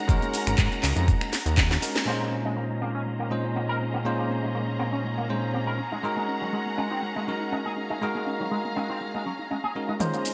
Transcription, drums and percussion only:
0.09 kick loud
0.09 closed hi-hat medium
0.09 shaker soft
0.22 closed hi-hat soft
0.22 shaker soft
0.34 open hi-hat loud
0.34 shaker medium
0.47 finger snap medium
0.47 closed hi-hat medium
0.47 shaker soft
0.58 kick loud
0.58 clap loud
0.58 closed hi-hat medium
0.58 shaker soft
0.72 closed hi-hat soft
0.72 shaker soft
0.83 clap medium
0.83 open hi-hat loud
0.83 shaker medium
0.97 closed hi-hat medium
0.97 shaker soft
1.08 kick loud
1.08 closed hi-hat medium
1.08 shaker soft
1.21 finger snap medium
1.21 closed hi-hat soft
1.21 shaker soft
1.33 snare medium
1.33 open hi-hat loud
1.33 shaker medium
1.46 closed hi-hat medium
1.46 shaker soft
1.58 kick loud
1.58 snare medium
1.58 clap loud
1.58 closed hi-hat medium
1.58 shaker soft
1.71 snare medium
1.71 closed hi-hat soft
1.71 shaker soft
1.82 open hi-hat loud
1.82 shaker medium
1.96 snare medium
1.96 closed hi-hat medium
1.96 shaker soft
10.00 closed hi-hat soft
10.00 mid tom soft
10.00 shaker soft
10.14 closed hi-hat soft
10.14 shaker soft
10.25 open hi-hat loud
10.25 shaker medium

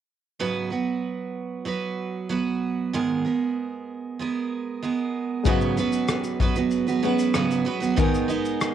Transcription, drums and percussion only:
5.45 kick loud
5.45 shaker medium
5.61 shaker soft
5.77 shaker soft
5.92 shaker soft
6.08 cross-stick loud
6.08 shaker medium
6.24 shaker soft
6.40 kick medium
6.56 shaker soft
6.71 shaker medium
6.88 shaker medium
7.19 shaker medium
7.34 cross-stick medium
7.34 shaker medium
7.51 shaker soft
7.83 shaker soft
7.98 kick loud
7.98 shaker medium
8.14 shaker soft
8.30 shaker soft
8.45 shaker soft
8.61 cross-stick loud
8.61 shaker medium

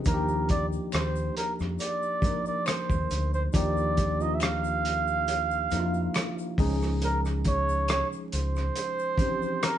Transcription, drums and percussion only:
0.04 kick loud
0.04 closed hi-hat medium
0.04 shaker medium
0.28 shaker soft
0.49 kick medium
0.49 closed hi-hat medium
0.49 shaker medium
0.73 shaker soft
0.92 finger snap medium
0.92 cross-stick medium
0.92 closed hi-hat medium
0.92 shaker medium
1.16 shaker soft
1.37 closed hi-hat medium
1.59 cross-stick soft
1.59 shaker soft
1.79 closed hi-hat medium
1.79 shaker medium
2.03 shaker soft
2.22 kick medium
2.22 closed hi-hat medium
2.22 shaker soft
2.46 shaker soft
2.66 finger snap medium
2.66 cross-stick loud
2.66 closed hi-hat medium
2.66 shaker medium
2.90 kick medium
2.90 shaker soft
3.10 closed hi-hat medium
3.10 shaker soft
3.34 shaker soft
3.53 kick loud
3.53 closed hi-hat medium
3.53 shaker medium
3.77 shaker soft
3.97 kick medium
3.97 closed hi-hat medium
3.97 shaker soft
4.21 shaker soft
4.40 finger snap medium
4.40 cross-stick loud
4.40 closed hi-hat medium
4.40 shaker medium
4.64 shaker soft
4.85 closed hi-hat medium
5.07 shaker soft
5.27 closed hi-hat medium
5.27 shaker medium
5.51 shaker soft
5.71 closed hi-hat medium
5.71 shaker soft
5.94 shaker soft
6.14 finger snap medium
6.14 cross-stick loud
6.14 closed hi-hat medium
6.14 shaker medium
6.38 shaker soft
6.58 kick loud
6.58 open hi-hat soft
6.58 shaker soft
6.82 cross-stick soft
6.82 shaker soft
7.01 closed hi-hat medium
7.01 shaker medium
7.25 cross-stick soft
7.25 shaker soft
7.44 kick medium
7.44 closed hi-hat medium
7.44 shaker medium
7.69 shaker soft
7.88 finger snap medium
7.88 cross-stick loud
7.88 closed hi-hat medium
7.88 shaker medium
8.13 shaker soft
8.32 closed hi-hat medium
8.56 cross-stick soft
8.56 shaker soft
8.76 closed hi-hat medium
8.76 shaker medium
8.99 shaker soft
9.18 kick medium
9.18 closed hi-hat medium
9.18 shaker soft
9.42 shaker soft
9.63 finger snap medium
9.63 cross-stick loud
9.63 closed hi-hat medium
9.63 shaker medium

